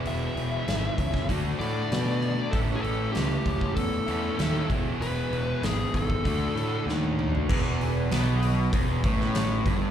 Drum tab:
CC |----------------|----------------|----------------|x---------------|
HH |o-o-o-o-o-o-o-o-|o-o-o-o-o-o-o-o-|o-o-o-o-o-o-----|--o-o-o-o-o-o-o-|
SD |----o--o----o---|----o-------o---|----o-------o---|----o------oo---|
T1 |----------------|----------------|-------------o--|----------------|
T2 |----------------|----------------|--------------o-|----------------|
FT |----------------|----------------|---------------o|----------------|
BD |------ooo-------|o-----ooo-----o-|------ooo-------|o-------o-o---o-|